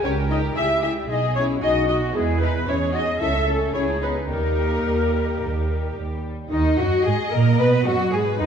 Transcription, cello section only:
0, 0, Header, 1, 2, 480
1, 0, Start_track
1, 0, Key_signature, 5, "minor"
1, 0, Tempo, 530504
1, 33, Time_signature, 4, 2, 24, 8
1, 2913, Tempo, 549954
1, 5793, Tempo, 535714
1, 7532, End_track
2, 0, Start_track
2, 0, Title_t, "Cello section"
2, 0, Program_c, 0, 48
2, 33, Note_on_c, 0, 70, 82
2, 503, Note_off_c, 0, 70, 0
2, 512, Note_on_c, 0, 67, 76
2, 991, Note_on_c, 0, 68, 90
2, 992, Note_off_c, 0, 67, 0
2, 1462, Note_off_c, 0, 68, 0
2, 1468, Note_on_c, 0, 66, 74
2, 1941, Note_off_c, 0, 66, 0
2, 1954, Note_on_c, 0, 64, 75
2, 2424, Note_off_c, 0, 64, 0
2, 2436, Note_on_c, 0, 68, 74
2, 2905, Note_off_c, 0, 68, 0
2, 2918, Note_on_c, 0, 69, 78
2, 3389, Note_off_c, 0, 69, 0
2, 3394, Note_on_c, 0, 68, 70
2, 3861, Note_off_c, 0, 68, 0
2, 3868, Note_on_c, 0, 67, 80
2, 5521, Note_off_c, 0, 67, 0
2, 5797, Note_on_c, 0, 63, 94
2, 6021, Note_off_c, 0, 63, 0
2, 6039, Note_on_c, 0, 66, 99
2, 6280, Note_off_c, 0, 66, 0
2, 6282, Note_on_c, 0, 68, 90
2, 6521, Note_off_c, 0, 68, 0
2, 6523, Note_on_c, 0, 70, 93
2, 6760, Note_off_c, 0, 70, 0
2, 6770, Note_on_c, 0, 71, 104
2, 7003, Note_off_c, 0, 71, 0
2, 7004, Note_on_c, 0, 66, 109
2, 7234, Note_off_c, 0, 66, 0
2, 7238, Note_on_c, 0, 68, 97
2, 7475, Note_off_c, 0, 68, 0
2, 7479, Note_on_c, 0, 63, 95
2, 7532, Note_off_c, 0, 63, 0
2, 7532, End_track
0, 0, End_of_file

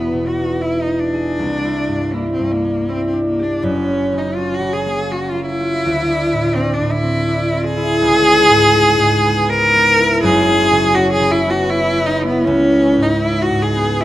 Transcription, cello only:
0, 0, Header, 1, 2, 480
1, 0, Start_track
1, 0, Tempo, 747198
1, 894, Time_signature, 3, 2, 24, 8
1, 2811, Tempo, 725514
1, 5211, Tempo, 741656
1, 7131, Tempo, 761421
1, 9068, End_track
2, 0, Start_track
2, 0, Title_t, "Cello"
2, 0, Program_c, 0, 42
2, 0, Note_on_c, 0, 59, 79
2, 176, Note_on_c, 0, 66, 65
2, 185, Note_off_c, 0, 59, 0
2, 394, Note_on_c, 0, 64, 67
2, 404, Note_off_c, 0, 66, 0
2, 525, Note_on_c, 0, 63, 64
2, 535, Note_off_c, 0, 64, 0
2, 639, Note_on_c, 0, 62, 82
2, 649, Note_off_c, 0, 63, 0
2, 1370, Note_on_c, 0, 58, 70
2, 1380, Note_off_c, 0, 62, 0
2, 1495, Note_off_c, 0, 58, 0
2, 1500, Note_on_c, 0, 60, 64
2, 1616, Note_on_c, 0, 58, 66
2, 1626, Note_off_c, 0, 60, 0
2, 1858, Note_on_c, 0, 60, 77
2, 1868, Note_off_c, 0, 58, 0
2, 1974, Note_off_c, 0, 60, 0
2, 1978, Note_on_c, 0, 60, 62
2, 2089, Note_off_c, 0, 60, 0
2, 2093, Note_on_c, 0, 58, 73
2, 2201, Note_on_c, 0, 62, 73
2, 2210, Note_off_c, 0, 58, 0
2, 2338, Note_on_c, 0, 61, 83
2, 2348, Note_off_c, 0, 62, 0
2, 2686, Note_on_c, 0, 63, 72
2, 2695, Note_off_c, 0, 61, 0
2, 2792, Note_on_c, 0, 65, 79
2, 2802, Note_off_c, 0, 63, 0
2, 2921, Note_on_c, 0, 66, 81
2, 2931, Note_off_c, 0, 65, 0
2, 3047, Note_on_c, 0, 68, 82
2, 3057, Note_off_c, 0, 66, 0
2, 3298, Note_on_c, 0, 66, 74
2, 3308, Note_off_c, 0, 68, 0
2, 3416, Note_on_c, 0, 65, 70
2, 3425, Note_off_c, 0, 66, 0
2, 3525, Note_off_c, 0, 65, 0
2, 3529, Note_on_c, 0, 64, 100
2, 4249, Note_on_c, 0, 60, 86
2, 4259, Note_off_c, 0, 64, 0
2, 4371, Note_on_c, 0, 62, 81
2, 4381, Note_off_c, 0, 60, 0
2, 4493, Note_on_c, 0, 64, 92
2, 4503, Note_off_c, 0, 62, 0
2, 4972, Note_on_c, 0, 68, 124
2, 4982, Note_off_c, 0, 64, 0
2, 6178, Note_on_c, 0, 70, 121
2, 6188, Note_off_c, 0, 68, 0
2, 6656, Note_off_c, 0, 70, 0
2, 6660, Note_on_c, 0, 68, 117
2, 7117, Note_on_c, 0, 66, 102
2, 7126, Note_off_c, 0, 68, 0
2, 7229, Note_off_c, 0, 66, 0
2, 7233, Note_on_c, 0, 68, 100
2, 7347, Note_on_c, 0, 64, 97
2, 7357, Note_off_c, 0, 68, 0
2, 7467, Note_on_c, 0, 66, 97
2, 7476, Note_off_c, 0, 64, 0
2, 7588, Note_on_c, 0, 64, 107
2, 7597, Note_off_c, 0, 66, 0
2, 7818, Note_on_c, 0, 63, 99
2, 7827, Note_off_c, 0, 64, 0
2, 7947, Note_off_c, 0, 63, 0
2, 7953, Note_on_c, 0, 59, 88
2, 8062, Note_on_c, 0, 61, 105
2, 8071, Note_off_c, 0, 59, 0
2, 8425, Note_on_c, 0, 63, 88
2, 8434, Note_off_c, 0, 61, 0
2, 8554, Note_on_c, 0, 64, 97
2, 8564, Note_off_c, 0, 63, 0
2, 8676, Note_on_c, 0, 66, 91
2, 8686, Note_off_c, 0, 64, 0
2, 8803, Note_on_c, 0, 68, 91
2, 8812, Note_off_c, 0, 66, 0
2, 9047, Note_on_c, 0, 64, 92
2, 9056, Note_off_c, 0, 68, 0
2, 9068, Note_off_c, 0, 64, 0
2, 9068, End_track
0, 0, End_of_file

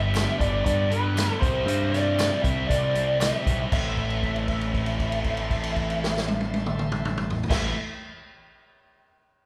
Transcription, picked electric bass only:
0, 0, Header, 1, 2, 480
1, 0, Start_track
1, 0, Key_signature, 0, "minor"
1, 0, Tempo, 510638
1, 1575, Time_signature, 4, 2, 24, 8
1, 8891, End_track
2, 0, Start_track
2, 0, Title_t, "Picked electric bass"
2, 0, Program_c, 0, 34
2, 0, Note_on_c, 0, 31, 107
2, 247, Note_off_c, 0, 31, 0
2, 373, Note_on_c, 0, 31, 89
2, 570, Note_off_c, 0, 31, 0
2, 618, Note_on_c, 0, 43, 104
2, 1208, Note_off_c, 0, 43, 0
2, 1334, Note_on_c, 0, 36, 87
2, 1531, Note_off_c, 0, 36, 0
2, 1559, Note_on_c, 0, 43, 107
2, 2157, Note_off_c, 0, 43, 0
2, 2295, Note_on_c, 0, 36, 84
2, 2492, Note_off_c, 0, 36, 0
2, 2530, Note_on_c, 0, 36, 95
2, 3124, Note_off_c, 0, 36, 0
2, 3256, Note_on_c, 0, 35, 88
2, 3453, Note_off_c, 0, 35, 0
2, 3497, Note_on_c, 0, 33, 103
2, 6953, Note_off_c, 0, 33, 0
2, 7051, Note_on_c, 0, 33, 99
2, 7250, Note_off_c, 0, 33, 0
2, 8891, End_track
0, 0, End_of_file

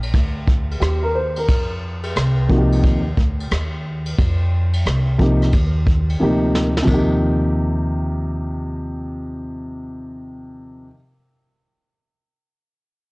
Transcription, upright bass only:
0, 0, Header, 1, 2, 480
1, 0, Start_track
1, 0, Key_signature, -3, "major"
1, 0, Tempo, 674157
1, 1057, Time_signature, 4, 2, 24, 8
1, 9338, End_track
2, 0, Start_track
2, 0, Title_t, "Upright bass"
2, 0, Program_c, 0, 32
2, 0, Note_on_c, 0, 34, 78
2, 76, Note_off_c, 0, 34, 0
2, 99, Note_on_c, 0, 38, 96
2, 554, Note_off_c, 0, 38, 0
2, 579, Note_on_c, 0, 39, 82
2, 1058, Note_off_c, 0, 39, 0
2, 1058, Note_on_c, 0, 41, 92
2, 1514, Note_off_c, 0, 41, 0
2, 1538, Note_on_c, 0, 36, 80
2, 1994, Note_off_c, 0, 36, 0
2, 2019, Note_on_c, 0, 39, 80
2, 2246, Note_off_c, 0, 39, 0
2, 2262, Note_on_c, 0, 38, 78
2, 2488, Note_off_c, 0, 38, 0
2, 2503, Note_on_c, 0, 39, 76
2, 2956, Note_off_c, 0, 39, 0
2, 2979, Note_on_c, 0, 41, 92
2, 3435, Note_off_c, 0, 41, 0
2, 3459, Note_on_c, 0, 36, 81
2, 3914, Note_off_c, 0, 36, 0
2, 3942, Note_on_c, 0, 39, 88
2, 4396, Note_off_c, 0, 39, 0
2, 4423, Note_on_c, 0, 38, 70
2, 4877, Note_off_c, 0, 38, 0
2, 4895, Note_on_c, 0, 39, 81
2, 7760, Note_off_c, 0, 39, 0
2, 9338, End_track
0, 0, End_of_file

